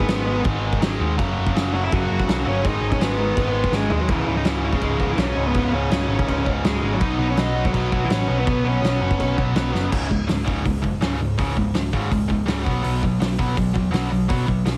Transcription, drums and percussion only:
0.08 snare loud
0.08 crash medium
0.44 kick loud
0.44 crash medium
0.73 kick loud
0.82 snare loud
0.82 crash medium
1.19 kick loud
1.19 crash medium
1.47 kick medium
1.56 snare loud
1.56 crash medium
1.92 kick loud
1.92 crash medium
2.20 kick loud
2.29 snare loud
2.29 crash medium
2.65 kick loud
2.65 crash medium
2.92 kick loud
3.01 snare loud
3.01 crash medium
3.37 kick loud
3.37 crash medium
3.64 kick loud
3.73 snare medium
3.90 floor tom loud
4.08 kick loud
4.08 crash medium
4.45 snare loud
4.45 crash medium
4.73 kick medium
4.81 kick medium
4.81 crash medium
5.00 kick medium
5.18 snare loud
5.18 crash medium
5.54 kick loud
5.54 crash medium
5.91 snare loud
5.91 crash medium
6.19 kick medium
6.29 kick loud
6.29 crash medium
6.46 kick medium
6.64 snare loud
6.64 crash medium
7.01 kick loud
7.01 crash medium
7.37 snare loud
7.37 crash medium
7.65 kick medium
7.74 kick loud
7.74 crash medium
7.92 kick medium
8.10 snare loud
8.10 crash medium
8.47 kick loud
8.47 crash medium
8.84 snare loud
8.84 crash medium
9.11 kick medium
9.20 kick loud
9.20 crash medium
9.38 kick medium
9.56 snare loud
9.56 crash medium
9.75 snare medium
9.92 kick loud
9.92 crash loud
10.11 kick medium
10.29 snare loud
10.29 open hi-hat medium
10.48 kick loud
10.66 kick loud
10.66 open hi-hat medium
10.84 kick medium
11.02 snare loud
11.02 open hi-hat medium
11.39 kick loud
11.39 open hi-hat medium
11.57 kick medium
11.75 snare loud
11.75 open hi-hat medium
11.93 kick medium
12.12 kick loud
12.12 open hi-hat medium
12.30 kick medium
12.48 snare loud
12.48 open hi-hat medium
12.66 kick loud
12.84 open hi-hat medium
13.03 kick medium
13.21 snare loud
13.21 open hi-hat medium
13.39 kick medium
13.57 kick loud
13.57 open hi-hat medium
13.76 kick medium
13.94 snare loud
13.94 open hi-hat medium
14.29 kick loud
14.29 open hi-hat medium
14.48 kick medium
14.66 snare loud
14.66 open hi-hat medium

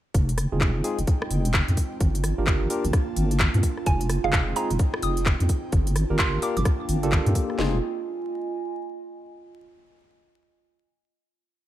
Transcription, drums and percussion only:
0.14 kick loud
0.14 closed hi-hat medium
0.29 closed hi-hat medium
0.38 cross-stick medium
0.38 open hi-hat loud
0.61 kick loud
0.61 clap loud
0.84 open hi-hat loud
0.99 closed hi-hat medium
1.07 kick loud
1.07 closed hi-hat medium
1.22 cross-stick medium
1.31 open hi-hat loud
1.45 closed hi-hat medium
1.54 kick loud
1.54 clap loud
1.68 closed hi-hat soft
1.77 kick medium
1.77 open hi-hat loud
2.00 kick loud
2.00 closed hi-hat medium
2.15 closed hi-hat medium
2.24 cross-stick medium
2.24 open hi-hat loud
2.47 kick loud
2.47 clap loud
2.70 open hi-hat loud
2.85 closed hi-hat medium
2.93 kick loud
2.93 cross-stick medium
2.93 closed hi-hat medium
3.17 open hi-hat loud
3.31 closed hi-hat medium
3.40 kick loud
3.40 clap loud
3.54 closed hi-hat soft
3.63 kick medium
3.63 open hi-hat loud
3.77 cross-stick soft
3.86 kick loud
3.86 closed hi-hat medium
4.01 closed hi-hat medium
4.09 cross-stick medium
4.09 open hi-hat loud
4.33 kick loud
4.33 clap loud
4.56 open hi-hat loud
4.71 closed hi-hat medium
4.79 kick loud
4.79 closed hi-hat medium
4.94 cross-stick medium
5.03 open hi-hat loud
5.17 closed hi-hat medium
5.26 kick loud
5.26 clap loud
5.40 closed hi-hat soft
5.49 kick medium
5.49 open hi-hat loud
5.72 kick loud
5.72 closed hi-hat medium
5.87 closed hi-hat medium
5.96 cross-stick medium
5.96 open hi-hat loud
6.19 kick loud
6.19 clap loud
6.42 open hi-hat loud
6.57 closed hi-hat medium
6.65 kick loud
6.65 cross-stick medium
6.65 closed hi-hat medium
6.89 open hi-hat loud
7.03 closed hi-hat medium
7.12 kick loud
7.12 clap loud
7.26 closed hi-hat soft
7.35 kick medium
7.35 open hi-hat loud
7.50 cross-stick soft
7.59 snare loud

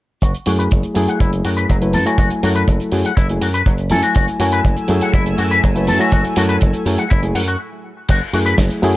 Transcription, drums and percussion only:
0.22 kick loud
0.22 closed hi-hat medium
0.22 shaker soft
0.35 closed hi-hat soft
0.46 open hi-hat loud
0.46 shaker medium
0.59 closed hi-hat medium
0.59 shaker soft
0.71 kick loud
0.71 closed hi-hat medium
0.71 shaker soft
0.83 closed hi-hat soft
0.83 shaker soft
0.95 open hi-hat medium
0.95 shaker medium
1.08 closed hi-hat medium
1.08 shaker soft
1.20 kick loud
1.20 closed hi-hat medium
1.20 shaker soft
1.33 closed hi-hat soft
1.45 open hi-hat loud
1.45 shaker medium
1.57 closed hi-hat medium
1.57 shaker soft
1.69 kick loud
1.69 closed hi-hat medium
1.69 shaker soft
1.82 closed hi-hat soft
1.93 open hi-hat medium
1.93 shaker medium
2.06 closed hi-hat medium
2.06 shaker soft
2.18 kick loud
2.18 closed hi-hat medium
2.18 shaker soft
2.30 closed hi-hat soft
2.43 open hi-hat loud
2.43 shaker medium
2.55 closed hi-hat medium
2.55 shaker soft
2.68 kick loud
2.68 closed hi-hat medium
2.68 shaker soft
2.80 closed hi-hat soft
2.80 shaker soft
2.92 open hi-hat medium
2.92 shaker medium
3.05 closed hi-hat medium
3.05 shaker soft
3.17 kick loud
3.17 closed hi-hat medium
3.17 shaker soft
3.29 closed hi-hat soft
3.42 open hi-hat loud
3.42 shaker medium
3.54 closed hi-hat medium
3.54 shaker soft
3.66 kick loud
3.66 closed hi-hat medium
3.66 shaker soft
3.78 closed hi-hat soft
3.90 open hi-hat medium
3.90 shaker medium
4.02 closed hi-hat medium
4.02 shaker soft
4.15 kick loud
4.15 closed hi-hat medium
4.15 shaker soft
4.28 closed hi-hat soft
4.40 open hi-hat loud
4.40 shaker medium
4.52 closed hi-hat medium
4.52 shaker soft
4.64 kick loud
4.64 closed hi-hat medium
4.64 shaker medium
4.77 closed hi-hat soft
4.77 shaker soft
4.88 open hi-hat loud
4.88 shaker medium
5.01 closed hi-hat medium
5.01 shaker soft
5.14 kick loud
5.14 closed hi-hat medium
5.14 shaker medium
5.26 closed hi-hat soft
5.38 open hi-hat medium
5.38 shaker medium
5.51 closed hi-hat medium
5.51 shaker soft
5.64 kick loud
5.64 closed hi-hat medium
5.64 shaker medium
5.76 closed hi-hat soft
5.87 open hi-hat medium
5.87 shaker medium
5.99 closed hi-hat medium
5.99 shaker soft
6.12 kick loud
6.12 closed hi-hat medium
6.12 shaker soft
6.25 closed hi-hat soft
6.25 shaker soft
6.36 open hi-hat loud
6.36 shaker medium
6.49 closed hi-hat medium
6.49 shaker soft
6.61 kick loud
6.61 closed hi-hat medium
6.61 shaker soft
6.73 closed hi-hat soft
6.73 shaker soft
6.86 open hi-hat loud
6.86 shaker medium
6.98 closed hi-hat medium
6.98 shaker soft
7.10 kick loud
7.10 closed hi-hat medium
7.10 shaker soft
7.23 closed hi-hat soft
7.35 open hi-hat loud
7.35 shaker medium
7.48 closed hi-hat medium
7.48 shaker soft
8.08 kick loud
8.08 closed hi-hat medium
8.08 crash medium
8.08 shaker soft
8.34 open hi-hat loud
8.34 shaker medium
8.46 closed hi-hat medium
8.46 shaker soft
8.58 kick loud
8.58 snare loud
8.58 closed hi-hat medium
8.58 shaker medium
8.70 closed hi-hat soft
8.70 shaker soft
8.83 open hi-hat medium
8.83 shaker medium

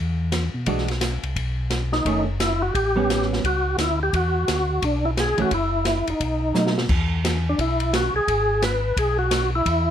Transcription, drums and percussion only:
0.32 snare soft
0.32 hi-hat pedal soft
0.32 ride medium
0.66 kick soft
0.66 ride soft
0.78 snare soft
0.88 snare soft
0.88 ride soft
1.01 snare medium
1.01 hi-hat pedal soft
1.01 ride medium
1.23 ride soft
1.36 kick soft
1.36 ride soft
1.70 snare soft
1.70 hi-hat pedal soft
1.70 ride soft
1.92 snare soft
2.05 kick soft
2.05 ride soft
2.40 snare medium
2.40 hi-hat pedal medium
2.40 ride medium
2.75 kick soft
2.75 ride soft
3.10 snare soft
3.10 hi-hat pedal soft
3.10 ride soft
3.22 snare soft
3.33 snare soft
3.44 kick soft
3.44 ride soft
3.78 snare soft
3.78 hi-hat pedal medium
3.78 ride soft
4.13 kick soft
4.13 ride medium
4.48 snare medium
4.48 hi-hat pedal soft
4.48 ride soft
4.82 kick soft
4.82 ride medium
5.17 snare medium
5.17 hi-hat pedal soft
5.17 ride medium
5.38 ride soft
5.51 kick soft
5.51 ride soft
5.85 snare soft
5.85 hi-hat pedal soft
5.85 ride soft
6.07 ride soft
6.20 kick soft
6.20 ride soft
6.55 snare soft
6.55 hi-hat pedal medium
6.67 snare soft
6.78 snare medium
6.89 kick medium
6.89 crash medium
7.25 snare medium
7.25 hi-hat pedal soft
7.25 ride medium
7.58 kick soft
7.58 ride soft
7.80 ride soft
7.93 snare medium
7.93 hi-hat pedal medium
7.93 ride medium
8.28 kick soft
8.28 ride soft
8.62 snare medium
8.62 hi-hat pedal soft
8.62 ride soft
8.97 kick soft
8.97 ride medium
9.31 snare medium
9.31 hi-hat pedal medium
9.31 ride medium
9.66 kick soft
9.66 ride medium

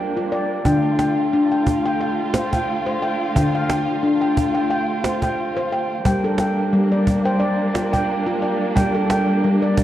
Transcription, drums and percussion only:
0.32 cajon slap soft
0.65 cajon bass medium
0.99 cajon slap soft
1.51 cajon slap soft
1.67 cajon bass soft
2.01 cajon slap soft
2.34 cajon slap medium
2.53 cajon bass soft
3.36 cajon bass medium
3.69 cajon slap medium
4.22 cajon slap soft
4.37 cajon bass soft
4.70 cajon slap soft
5.04 cajon slap medium
5.22 cajon bass soft
6.05 cajon bass medium
6.38 cajon slap soft
6.91 cajon slap soft
7.07 cajon bass soft
7.41 cajon slap soft
7.75 cajon slap medium
7.93 cajon bass soft
8.77 cajon bass medium
9.10 cajon slap medium
9.62 cajon slap soft
9.77 cajon bass medium

